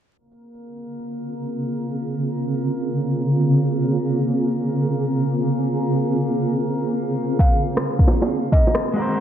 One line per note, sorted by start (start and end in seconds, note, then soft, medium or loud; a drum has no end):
0.17 7.35 C#3 medium
0.17 9.20 A#3 medium
0.17 9.20 C4 medium
0.17 7.35 F4 medium
0.17 9.20 G#4 medium
0.17 9.20 A#4 medium
0.32 shaker soft
0.54 shaker medium
0.77 shaker soft
0.99 shaker medium
1.44 shaker soft
1.90 shaker medium
2.12 shaker soft
2.35 shaker medium
2.57 shaker soft
2.80 shaker medium
3.25 shaker soft
3.71 shaker medium
3.93 shaker soft
4.15 shaker medium
4.38 shaker soft
4.60 shaker medium
5.05 shaker soft
5.50 shaker medium
5.73 shaker soft
5.96 shaker soft
6.18 shaker soft
6.41 shaker soft
6.86 shaker soft
7.31 shaker medium
7.39 9.20 D#3 medium
7.39 9.20 F#4 medium
7.39 7.64 F5 medium
7.39 kick loud
7.54 shaker soft
7.77 cross-stick loud
7.77 shaker soft
7.99 kick loud
7.99 shaker soft
8.08 low bongo medium
8.22 low bongo medium
8.22 shaker soft
8.52 8.76 D#5 medium
8.52 kick loud
8.67 low bongo soft
8.67 shaker soft
8.75 cross-stick loud
8.93 9.20 G#3 medium
8.93 9.20 F#4 medium
8.99 9.20 A#4 medium
8.99 9.20 C5 loud
9.12 shaker soft